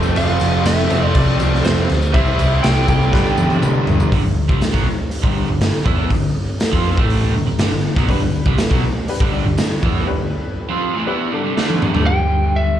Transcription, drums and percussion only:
0.03 tambourine medium
0.15 tambourine soft
0.15 crash medium
0.28 tambourine soft
0.40 tambourine medium
0.40 crash medium
0.65 snare loud
0.65 tambourine medium
0.65 crash medium
0.90 tambourine medium
0.90 crash medium
1.15 kick loud
1.15 tambourine soft
1.15 crash medium
1.40 tambourine medium
1.40 crash medium
1.54 snare soft
1.65 snare loud
1.65 tambourine medium
1.65 crash medium
1.90 snare soft
1.90 tambourine soft
1.90 crash medium
2.02 tambourine medium
2.14 kick loud
2.14 crash medium
2.27 tambourine soft
2.39 tambourine medium
2.39 crash medium
2.52 tambourine soft
2.64 snare loud
2.64 tambourine medium
2.64 crash medium
2.77 tambourine soft
2.88 kick medium
2.88 tambourine medium
2.88 crash medium
3.02 tambourine soft
3.13 kick loud
3.13 snare medium
3.26 tambourine soft
3.38 high tom medium
3.38 tambourine medium
3.50 high tom medium
3.50 tambourine soft
3.62 mid tom loud
3.62 tambourine loud
3.87 floor tom loud
3.87 tambourine soft
4.00 floor tom medium
4.00 tambourine medium
4.12 kick loud
4.12 open hi-hat medium
4.49 kick loud
4.61 snare loud
4.61 open hi-hat medium
4.61 tambourine medium
4.74 kick loud
5.11 open hi-hat medium
5.24 kick loud
5.61 snare loud
5.61 open hi-hat medium
5.61 tambourine medium
5.86 kick loud
6.11 kick medium
6.11 open hi-hat medium
6.60 snare loud
6.60 open hi-hat medium
6.60 tambourine medium
6.73 kick loud
6.97 kick loud
7.10 open hi-hat medium
7.59 snare loud
7.59 open hi-hat medium
7.59 tambourine medium
7.96 kick loud
7.96 snare soft
8.08 kick loud
8.08 open hi-hat medium
8.46 kick medium
8.58 snare loud
8.58 open hi-hat medium
8.58 tambourine medium
8.71 kick loud
9.08 open hi-hat medium
9.20 kick loud
9.58 snare loud
9.58 open hi-hat medium
9.58 tambourine loud
9.83 kick loud
11.58 snare medium
11.70 high tom medium
11.82 mid tom medium
11.95 floor tom loud

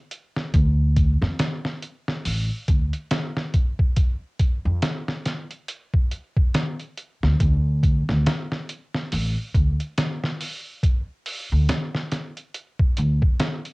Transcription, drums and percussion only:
0.11 closed hi-hat medium
0.36 snare soft
0.54 kick loud
0.54 closed hi-hat medium
0.97 kick medium
0.97 closed hi-hat medium
1.22 snare soft
1.39 snare loud
1.39 closed hi-hat medium
1.65 snare soft
1.82 closed hi-hat medium
2.08 snare soft
2.25 open hi-hat medium
2.68 kick medium
2.68 closed hi-hat medium
2.93 closed hi-hat soft
3.11 snare loud
3.11 closed hi-hat medium
3.37 snare soft
3.54 kick medium
3.54 closed hi-hat medium
3.79 kick medium
3.96 kick loud
3.96 closed hi-hat medium
4.39 kick medium
4.39 closed hi-hat medium
4.82 snare loud
4.82 closed hi-hat medium
5.08 snare soft
5.26 snare soft
5.26 closed hi-hat medium
5.51 closed hi-hat soft
5.68 closed hi-hat medium
5.94 kick medium
6.11 closed hi-hat medium
6.37 kick loud
6.54 snare loud
6.54 closed hi-hat medium
6.79 closed hi-hat soft
6.97 closed hi-hat medium
7.23 snare soft
7.40 kick loud
7.40 closed hi-hat medium
7.83 kick medium
7.83 closed hi-hat medium
8.09 snare soft
8.26 snare loud
8.26 closed hi-hat medium
8.52 snare soft
8.69 closed hi-hat medium
8.95 snare medium
9.12 open hi-hat medium
9.55 kick medium
9.55 closed hi-hat medium
9.80 closed hi-hat soft
9.98 snare loud
9.98 closed hi-hat medium
10.24 snare soft
10.41 open hi-hat medium
10.83 kick loud
10.83 closed hi-hat medium
11.26 open hi-hat medium
11.69 snare loud
11.69 closed hi-hat medium
11.95 snare soft
12.12 snare soft
12.12 closed hi-hat medium
12.37 closed hi-hat soft
12.54 closed hi-hat medium
12.79 kick medium
12.97 closed hi-hat medium
13.22 kick medium
13.40 snare loud
13.40 closed hi-hat medium
13.65 closed hi-hat soft

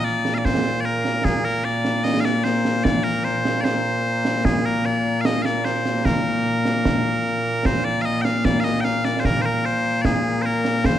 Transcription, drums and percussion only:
0.05 snare soft
0.25 snare medium
0.45 concert bass drum medium
0.45 snare medium
1.05 snare medium
1.25 concert bass drum medium
1.25 snare medium
1.65 snare soft
1.85 snare medium
2.05 snare loud
2.25 snare medium
2.45 snare medium
2.65 snare medium
2.85 concert bass drum medium
2.85 snare loud
3.25 snare soft
3.45 snare medium
3.65 snare loud
4.25 snare medium
4.45 concert bass drum medium
4.45 snare loud
4.85 snare soft
5.25 snare loud
5.45 snare medium
5.65 snare medium
5.85 snare medium
6.05 concert bass drum medium
6.05 snare medium
6.45 snare soft
6.65 snare medium
6.85 concert bass drum medium
6.85 snare loud
7.25 snare soft
7.65 concert bass drum medium
7.65 snare loud
8.25 snare medium
8.45 concert bass drum medium
8.45 snare loud
8.65 snare medium
8.85 snare medium
9.05 snare medium
9.25 concert bass drum medium
9.25 snare loud
9.65 snare soft
10.05 concert bass drum medium
10.05 snare medium
10.45 snare soft
10.65 snare medium
10.84 concert bass drum medium
10.84 snare loud

